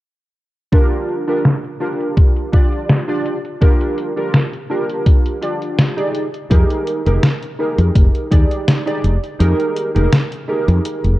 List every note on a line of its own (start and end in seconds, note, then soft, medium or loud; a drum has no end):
0.72 1.23 D4 medium
0.72 1.23 F4 medium
0.72 1.24 G4 medium
0.72 1.24 A#4 medium
0.72 kick loud
0.72 closed hi-hat medium
0.92 closed hi-hat soft
1.09 closed hi-hat medium
1.27 1.45 D4 medium
1.27 1.45 F4 medium
1.27 1.45 G4 medium
1.27 1.45 A#4 medium
1.27 closed hi-hat soft
1.45 snare loud
1.45 closed hi-hat medium
1.64 closed hi-hat soft
1.80 2.49 D4 medium
1.80 2.49 F4 medium
1.80 2.49 G4 medium
1.80 2.50 A#4 medium
2.00 closed hi-hat soft
2.17 kick loud
2.17 closed hi-hat medium
2.36 closed hi-hat soft
2.52 3.04 D4 medium
2.52 3.04 F4 medium
2.52 3.04 G4 medium
2.52 3.05 D5 medium
2.52 kick medium
2.52 closed hi-hat medium
2.73 closed hi-hat soft
2.89 snare loud
2.89 closed hi-hat medium
3.08 3.37 D4 medium
3.08 3.37 F4 medium
3.08 3.37 G4 medium
3.08 3.37 D5 medium
3.08 closed hi-hat soft
3.26 closed hi-hat medium
3.45 closed hi-hat soft
3.61 4.12 D4 medium
3.61 4.12 F4 medium
3.61 4.13 G4 medium
3.61 4.13 A#4 medium
3.61 kick loud
3.61 closed hi-hat medium
3.81 closed hi-hat soft
3.98 closed hi-hat medium
4.16 4.34 D4 medium
4.16 4.34 F4 medium
4.16 4.34 G4 medium
4.16 4.34 A#4 medium
4.16 closed hi-hat soft
4.34 snare loud
4.34 closed hi-hat medium
4.53 closed hi-hat soft
4.70 5.38 D4 medium
4.70 5.38 F4 medium
4.70 5.39 G4 medium
4.70 5.39 A#4 medium
4.89 closed hi-hat soft
5.06 kick loud
5.06 closed hi-hat medium
5.26 closed hi-hat soft
5.41 5.93 D4 medium
5.41 5.93 F4 medium
5.41 5.93 G4 medium
5.41 5.94 D5 medium
5.41 closed hi-hat medium
5.62 closed hi-hat soft
5.79 snare loud
5.79 closed hi-hat medium
5.97 6.26 D#4 medium
5.97 6.26 G4 medium
5.97 6.26 G#4 medium
5.97 6.27 D5 medium
5.97 closed hi-hat soft
6.15 closed hi-hat medium
6.34 closed hi-hat soft
6.50 6.63 F2 loud
6.50 7.01 D#4 medium
6.50 7.02 G4 medium
6.50 7.02 G#4 medium
6.50 7.02 A#4 loud
6.50 kick loud
6.50 closed hi-hat medium
6.70 closed hi-hat soft
6.87 closed hi-hat medium
7.06 7.17 F1 medium
7.06 7.23 D#4 medium
7.06 7.23 G4 medium
7.06 7.23 G#4 medium
7.06 7.24 A#4 medium
7.06 closed hi-hat soft
7.23 snare loud
7.23 closed hi-hat medium
7.43 closed hi-hat soft
7.59 8.28 D#4 medium
7.59 8.28 G4 medium
7.59 8.28 G#4 medium
7.59 8.28 A#4 medium
7.78 7.89 F2 loud
7.78 closed hi-hat soft
7.95 8.08 F1 loud
7.95 kick loud
7.95 closed hi-hat medium
8.15 closed hi-hat soft
8.31 8.44 D#2 medium
8.31 8.82 D#4 medium
8.31 8.82 G4 medium
8.31 8.83 G#4 medium
8.31 8.83 D5 medium
8.31 kick loud
8.31 closed hi-hat medium
8.51 closed hi-hat soft
8.68 snare loud
8.68 closed hi-hat medium
8.86 9.15 D#4 medium
8.86 9.15 G4 medium
8.86 9.16 G#4 medium
8.86 9.16 D5 medium
8.86 closed hi-hat soft
9.04 9.16 F1 medium
9.04 closed hi-hat medium
9.24 closed hi-hat soft
9.39 9.52 F2 medium
9.39 9.91 D#4 medium
9.39 9.91 G4 medium
9.39 9.91 G#4 medium
9.39 9.91 A#4 loud
9.39 closed hi-hat medium
9.60 closed hi-hat soft
9.76 closed hi-hat medium
9.95 10.06 F1 medium
9.95 10.12 D#4 medium
9.95 10.12 G4 medium
9.95 10.12 G#4 medium
9.95 10.13 A#4 medium
9.95 closed hi-hat soft
10.12 snare loud
10.12 closed hi-hat medium
10.32 closed hi-hat soft
10.48 11.16 D#4 medium
10.48 11.17 G4 medium
10.48 11.17 G#4 medium
10.48 11.17 A#4 medium
10.68 10.79 F2 loud
10.68 closed hi-hat soft
10.85 closed hi-hat medium
11.04 11.15 F1 medium
11.04 closed hi-hat soft